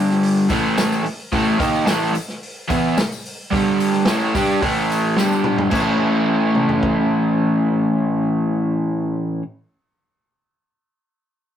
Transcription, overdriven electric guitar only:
0.00 0.48 G2 loud
0.00 0.48 D3 loud
0.00 0.49 G3 loud
0.49 1.02 A2 loud
0.49 1.04 E3 loud
0.49 1.04 A3 loud
1.04 muted overdriven electric guitar stroke medium
1.32 1.57 A2 loud
1.32 1.59 E3 loud
1.32 1.60 A3 loud
1.58 1.85 D#3 loud
1.58 1.86 A#3 loud
1.58 1.87 D#4 loud
1.85 2.13 A2 loud
1.85 2.14 E3 loud
1.85 2.14 A3 loud
2.14 muted overdriven electric guitar stroke medium
2.68 2.96 E3 loud
2.68 2.96 B3 loud
2.68 2.97 E4 loud
3.51 4.06 G2 medium
3.51 4.06 D3 loud
3.51 4.07 G3 loud
4.07 4.34 A2 loud
4.07 4.34 E3 loud
4.07 4.35 A3 loud
4.34 4.62 G3 loud
4.34 4.62 D4 medium
4.34 4.62 G4 loud
4.61 5.16 A2 medium
4.61 5.17 E3 loud
4.61 5.17 A3 loud
5.16 5.71 G2 loud
5.16 5.70 D3 loud
5.16 5.71 G3 loud
5.70 9.41 A2 medium
5.70 9.42 E3 loud
5.70 9.42 A3 loud
5.70 9.43 C#4 loud
5.75 9.44 E4 loud

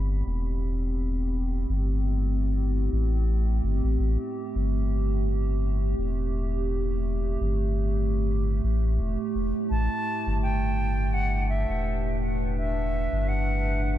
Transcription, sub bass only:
0.00 0.23 G1 medium
0.26 1.66 E1 loud
1.69 2.89 G1 loud
2.92 3.61 A1 loud
3.63 3.81 G1 loud
3.84 3.97 A1 loud
3.99 4.17 A1 loud
4.55 5.94 G1 loud
5.98 7.37 E1 medium
7.41 8.60 G1 loud
8.64 8.99 A1 loud
8.99 9.17 E1 medium
9.35 9.53 E1 medium
9.71 9.88 A1 loud
10.27 11.66 G1 loud
11.69 13.08 E1 medium
13.12 13.98 G1 loud

